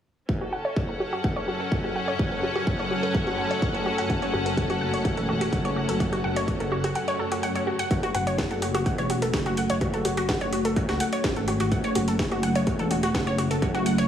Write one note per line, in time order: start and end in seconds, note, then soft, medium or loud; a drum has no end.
0.29 7.96 F#2 medium
0.29 7.87 A3 medium
0.29 7.87 C#4 medium
0.29 7.91 C#4 medium
0.29 7.87 F#4 medium
0.29 0.38 F#4 medium
0.29 kick loud
0.29 closed hi-hat medium
0.40 0.52 F#4 medium
0.40 7.91 A4 medium
0.40 closed hi-hat soft
0.53 0.64 F#5 medium
0.65 0.73 C#5 loud
0.65 closed hi-hat medium
0.76 0.88 F#4 medium
0.76 7.91 F#5 medium
0.76 kick loud
0.76 closed hi-hat medium
0.89 1.00 A4 medium
0.89 closed hi-hat soft
1.00 1.09 F#4 medium
1.13 1.24 F#4 medium
1.13 closed hi-hat medium
1.24 1.36 F#5 medium
1.24 kick loud
1.24 closed hi-hat medium
1.36 1.45 C#5 loud
1.36 closed hi-hat soft
1.48 1.60 F#4 medium
1.60 1.71 A4 medium
1.60 closed hi-hat medium
1.72 1.81 F#4 medium
1.72 kick loud
1.72 closed hi-hat medium
1.84 1.95 F#4 medium
1.84 closed hi-hat soft
1.96 2.07 F#5 medium
2.08 2.16 C#5 medium
2.08 closed hi-hat medium
2.19 2.31 F#4 medium
2.19 kick loud
2.19 closed hi-hat medium
2.32 2.43 A4 medium
2.32 closed hi-hat soft
2.43 2.52 F#4 medium
2.55 2.66 F#4 loud
2.55 closed hi-hat medium
2.67 2.79 F#5 medium
2.67 kick loud
2.67 closed hi-hat medium
2.79 2.88 C#5 loud
2.79 closed hi-hat soft
2.91 3.03 F#4 medium
3.03 3.14 A4 medium
3.03 closed hi-hat medium
3.15 3.24 F#4 medium
3.15 kick loud
3.15 closed hi-hat medium
3.27 3.38 F#4 loud
3.27 closed hi-hat soft
3.38 3.50 F#5 medium
3.51 3.59 C#5 loud
3.51 closed hi-hat medium
3.62 3.74 F#4 medium
3.62 kick loud
3.62 closed hi-hat medium
3.74 3.85 A4 medium
3.74 closed hi-hat soft
3.86 3.95 F#4 medium
3.98 4.09 F#4 loud
3.98 closed hi-hat medium
4.10 4.22 F#5 medium
4.10 kick loud
4.10 closed hi-hat medium
4.22 4.31 C#5 loud
4.22 closed hi-hat soft
4.34 4.66 F#1 medium
4.34 4.45 F#4 medium
4.46 4.57 A4 medium
4.46 closed hi-hat medium
4.57 4.66 F#4 medium
4.57 kick loud
4.57 closed hi-hat soft
4.70 5.02 F#1 medium
4.70 4.81 F#4 loud
4.70 closed hi-hat soft
4.81 4.93 F#5 medium
4.94 5.02 C#5 medium
4.94 closed hi-hat medium
5.05 5.17 F#4 medium
5.05 kick loud
5.05 closed hi-hat soft
5.17 5.50 E1 medium
5.17 5.28 A4 medium
5.17 closed hi-hat soft
5.29 5.38 F#4 medium
5.41 5.52 F#4 loud
5.41 closed hi-hat medium
5.53 5.85 F#1 medium
5.53 5.64 F#5 medium
5.53 kick loud
5.53 closed hi-hat soft
5.65 5.73 C#5 loud
5.65 closed hi-hat soft
5.76 5.88 F#4 medium
5.89 6.21 F#1 medium
5.89 6.00 A4 medium
5.89 closed hi-hat medium
6.00 6.09 F#4 medium
6.00 kick loud
6.00 closed hi-hat soft
6.13 6.23 F#4 loud
6.13 closed hi-hat soft
6.24 6.57 F#1 loud
6.24 6.36 F#5 medium
6.36 6.45 C#5 loud
6.36 closed hi-hat medium
6.48 6.60 F#4 medium
6.48 kick loud
6.48 closed hi-hat soft
6.60 6.92 F#1 medium
6.60 6.71 A4 medium
6.60 closed hi-hat soft
6.72 6.81 F#4 medium
6.84 6.95 F#4 loud
6.84 closed hi-hat medium
6.95 7.07 F#5 medium
6.95 closed hi-hat medium
7.08 7.16 C#5 loud
7.08 closed hi-hat soft
7.19 7.28 A4 medium
7.32 7.40 F#4 medium
7.32 closed hi-hat medium
7.43 7.52 F#5 medium
7.43 closed hi-hat soft
7.55 7.64 C#5 medium
7.55 closed hi-hat soft
7.67 7.72 F#4 medium
7.79 7.90 F#5 loud
7.79 closed hi-hat medium
7.91 14.08 A3 medium
7.91 14.08 C#4 medium
7.91 11.68 F#4 medium
7.91 8.00 F#4 medium
7.91 kick loud
7.91 closed hi-hat medium
8.03 8.14 F#4 loud
8.03 closed hi-hat soft
8.14 8.47 F#1 loud
8.14 8.26 F#5 medium
8.14 cross-stick soft
8.14 open hi-hat loud
8.27 8.35 C#5 loud
8.27 closed hi-hat medium
8.38 8.50 F#4 medium
8.38 kick loud
8.38 snare loud
8.38 closed hi-hat medium
8.51 8.83 F#1 medium
8.51 8.62 A4 medium
8.51 closed hi-hat soft
8.62 8.71 F#4 medium
8.62 open hi-hat loud
8.75 8.85 F#4 loud
8.75 closed hi-hat medium
8.86 8.98 F#5 medium
8.86 kick loud
8.86 closed hi-hat medium
8.98 9.31 E1 medium
8.98 9.07 C#5 loud
8.98 cross-stick soft
8.98 closed hi-hat soft
9.10 9.22 F#4 medium
9.10 open hi-hat loud
9.22 9.33 A4 medium
9.22 closed hi-hat medium
9.34 9.66 F#1 medium
9.34 9.43 F#4 medium
9.34 kick loud
9.34 snare loud
9.34 closed hi-hat medium
9.46 9.57 F#4 loud
9.46 closed hi-hat soft
9.57 9.69 F#5 medium
9.57 open hi-hat loud
9.70 10.02 F#1 medium
9.70 9.78 C#5 loud
9.70 closed hi-hat medium
9.81 9.93 F#4 medium
9.81 kick loud
9.81 cross-stick medium
9.81 closed hi-hat medium
9.94 10.05 A4 medium
9.94 closed hi-hat soft
10.05 10.38 F#1 loud
10.05 10.14 F#4 medium
10.05 open hi-hat loud
10.17 10.28 F#4 loud
10.17 closed hi-hat medium
10.29 10.41 F#5 medium
10.29 kick loud
10.29 snare loud
10.29 closed hi-hat medium
10.41 10.73 F#1 medium
10.41 10.50 C#5 loud
10.41 closed hi-hat soft
10.53 10.64 F#4 medium
10.53 open hi-hat loud
10.65 10.76 A4 medium
10.65 cross-stick soft
10.65 closed hi-hat medium
10.76 10.86 F#4 medium
10.76 kick loud
10.76 closed hi-hat medium
10.89 10.98 C#2 loud
10.89 11.00 F#4 loud
10.89 snare soft
10.89 closed hi-hat soft
11.00 11.12 F#5 medium
11.00 open hi-hat loud
11.13 11.21 C#5 loud
11.13 closed hi-hat medium
11.24 11.57 G#1 medium
11.24 11.36 F#4 medium
11.24 kick loud
11.24 snare loud
11.24 closed hi-hat medium
11.36 11.47 A4 medium
11.36 closed hi-hat soft
11.48 11.57 F#4 medium
11.48 cross-stick medium
11.48 open hi-hat loud
11.60 11.70 G#1 medium
11.60 11.71 F#4 loud
11.60 closed hi-hat medium
11.72 14.08 E4 medium
11.72 11.84 F#5 medium
11.72 kick loud
11.72 closed hi-hat medium
11.84 11.93 C#5 loud
11.84 closed hi-hat soft
11.95 12.28 F#1 loud
11.95 12.07 F#4 medium
11.95 open hi-hat loud
12.08 12.19 A4 medium
12.08 closed hi-hat medium
12.19 12.28 F#4 medium
12.19 kick loud
12.19 snare loud
12.19 closed hi-hat medium
12.32 12.64 F#1 medium
12.32 12.43 F#4 loud
12.32 cross-stick soft
12.32 closed hi-hat soft
12.43 12.55 F#5 medium
12.43 open hi-hat loud
12.55 12.64 C#5 loud
12.55 closed hi-hat medium
12.67 12.79 F#4 medium
12.67 kick loud
12.67 closed hi-hat medium
12.79 13.11 E1 medium
12.79 12.90 A4 medium
12.79 closed hi-hat soft
12.91 13.00 F#4 medium
12.91 open hi-hat loud
13.03 13.14 F#4 loud
13.03 closed hi-hat medium
13.15 13.47 F#1 medium
13.15 13.26 F#5 medium
13.15 kick loud
13.15 cross-stick medium
13.15 snare loud
13.15 closed hi-hat medium
13.27 13.35 C#5 loud
13.27 closed hi-hat soft
13.38 13.50 F#4 medium
13.38 open hi-hat loud
13.51 13.83 F#1 medium
13.51 13.62 A4 medium
13.51 closed hi-hat medium
13.62 13.71 F#4 medium
13.62 kick loud
13.62 closed hi-hat medium
13.75 13.85 F#4 loud
13.75 closed hi-hat soft
13.86 14.08 F#1 loud
13.86 13.98 F#5 medium
13.86 open hi-hat loud
13.98 14.07 C#5 loud
13.98 cross-stick medium
13.98 closed hi-hat medium